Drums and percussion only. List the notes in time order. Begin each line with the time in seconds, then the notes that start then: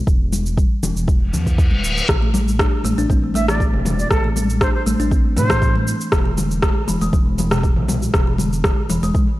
0.07 kick, cabasa
0.33 high conga, cabasa
0.46 cabasa
0.57 kick, high conga, cabasa
0.83 high conga, low conga, cabasa
0.97 cabasa
1.08 kick, high conga, cabasa
1.34 low conga, cabasa
1.46 kick, cabasa
1.58 kick, cabasa
1.71 high conga
1.84 cabasa
1.98 cabasa
2.09 kick, cross-stick, mid tom, cabasa
2.34 high conga, cabasa
2.48 cabasa
2.59 kick, cross-stick, cabasa
2.84 high conga, cabasa
2.99 cabasa
3.10 kick, high conga, cabasa
3.34 high conga, cabasa
3.48 cross-stick, cabasa
3.60 kick, cabasa
3.74 mid tom
3.85 mid tom, high conga, cabasa
3.99 cabasa
4.11 kick, cross-stick, mid tom, cabasa
4.36 high conga, cabasa
4.50 cabasa
4.61 kick, cross-stick, cabasa
4.87 high conga, cabasa
5.00 cabasa
5.11 kick, high conga, cabasa
5.37 mid tom, cabasa
5.50 kick, cross-stick, cabasa
5.62 kick, cabasa
5.75 high conga
5.87 cabasa
6.01 cabasa
6.12 kick, cross-stick, mid tom, cabasa
6.38 high conga, cabasa
6.51 cabasa
6.62 kick, cross-stick, cabasa
6.88 high conga, cabasa
7.02 cabasa
7.13 kick, high conga, cabasa
7.38 high conga, cabasa
7.51 cross-stick, cabasa
7.63 kick, cabasa
7.76 mid tom
7.88 mid tom, high conga, cabasa
8.02 cabasa
8.14 kick, cross-stick, mid tom, cabasa
8.38 high conga, cabasa
8.53 cabasa
8.64 kick, cross-stick, cabasa
8.90 high conga, cabasa
9.03 cabasa
9.15 kick, high conga, cabasa